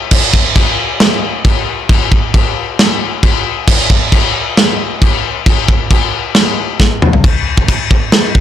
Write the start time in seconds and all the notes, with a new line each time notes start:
0.11 kick, crash, china
0.34 kick
0.56 kick, china
1.00 snare, china
1.45 kick, china
1.89 kick, china
2.12 kick
2.34 kick, china
2.79 snare, china
3.23 kick, china
3.68 kick, crash, china
3.90 kick
4.12 kick, china
4.57 snare, china
5.02 kick, china
5.46 kick, china
5.68 kick
5.91 kick, china
6.35 snare, china
6.80 kick, snare
7.02 mid tom
7.13 floor tom
7.24 kick, crash
7.58 kick
7.68 kick, crash
7.91 kick
8.12 snare, crash
8.35 kick